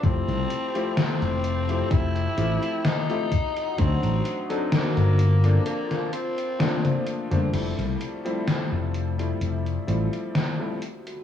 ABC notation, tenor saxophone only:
X:1
M:4/4
L:1/8
Q:"Swing 16ths" 1/4=64
K:F
V:1 name="Tenor saxophone"
C2 C2 E2 _E2 | C z B,2 B, C2 z | z8 |]